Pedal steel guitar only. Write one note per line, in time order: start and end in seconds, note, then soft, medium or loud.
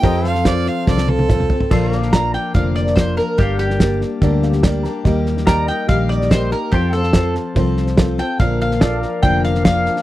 0.04 0.29 G4 medium
0.04 0.29 A#4 medium
0.04 0.31 D#5 medium
0.29 1.69 A4 medium
0.29 1.70 C5 medium
0.29 1.70 F5 medium
1.71 1.91 A4 medium
1.71 1.97 C5 medium
1.71 3.38 F5 medium
1.91 3.37 A#4 medium
1.97 3.37 D5 medium
3.39 5.04 A#4 medium
3.39 5.05 D5 medium
3.39 3.67 F5 medium
3.67 5.06 G5 medium
5.47 6.71 A#4 medium
5.47 5.68 D5 medium
5.47 6.72 G5 medium
5.68 6.72 D#5 medium
6.73 8.38 A4 medium
6.73 8.39 C5 medium
6.73 7.00 G5 medium
7.00 8.40 F5 medium
8.81 9.01 A4 medium
8.81 10.02 D5 medium
8.81 10.02 F5 medium
9.01 10.02 A#4 medium